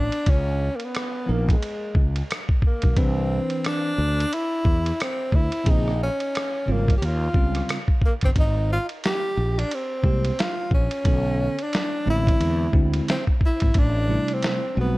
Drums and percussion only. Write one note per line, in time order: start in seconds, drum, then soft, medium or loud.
0.12 ride medium
0.26 kick loud
0.26 ride medium
0.80 ride soft
0.95 cross-stick loud
0.95 hi-hat pedal soft
0.95 ride medium
1.49 kick medium
1.49 ride medium
1.62 ride medium
1.95 kick medium
2.16 ride medium
2.31 cross-stick loud
2.31 hi-hat pedal medium
2.31 ride medium
2.49 kick medium
2.62 kick medium
2.82 kick medium
2.82 ride medium
2.96 kick loud
2.96 ride medium
3.50 ride soft
3.64 cross-stick loud
3.64 hi-hat pedal soft
3.64 ride medium
4.20 ride medium
4.33 ride medium
4.65 kick loud
4.86 ride medium
5.00 cross-stick loud
5.00 hi-hat pedal medium
5.00 ride medium
5.32 kick medium
5.52 ride medium
5.66 kick loud
5.66 ride medium
5.88 cross-stick soft
6.20 ride soft
6.35 cross-stick loud
6.35 hi-hat pedal soft
6.35 ride medium
6.88 kick medium
6.88 ride medium
7.02 ride medium
7.34 kick medium
7.55 cross-stick soft
7.55 ride medium
7.69 cross-stick loud
7.69 hi-hat pedal medium
7.69 ride medium
7.88 kick medium
8.02 kick medium
8.21 kick medium
8.21 cross-stick soft
8.21 ride medium
8.36 kick loud
8.36 ride medium
8.89 ride soft
9.04 snare loud
9.04 hi-hat pedal soft
9.04 ride medium
9.59 ride medium
9.71 ride medium
10.04 kick medium
10.25 ride medium
10.39 snare loud
10.39 hi-hat pedal medium
10.39 ride medium
10.71 kick medium
10.91 ride medium
11.05 kick loud
11.05 ride medium
11.59 ride soft
11.73 snare loud
11.73 hi-hat pedal soft
11.73 ride medium
12.27 kick medium
12.27 ride medium
12.41 ride medium
12.73 kick medium
12.94 ride medium
13.08 snare loud
13.08 hi-hat pedal medium
13.08 ride medium
13.27 kick medium
13.41 kick medium
13.60 kick medium
13.60 ride medium
13.74 kick loud
13.74 ride medium
14.28 ride soft
14.42 snare loud
14.42 hi-hat pedal soft
14.42 ride medium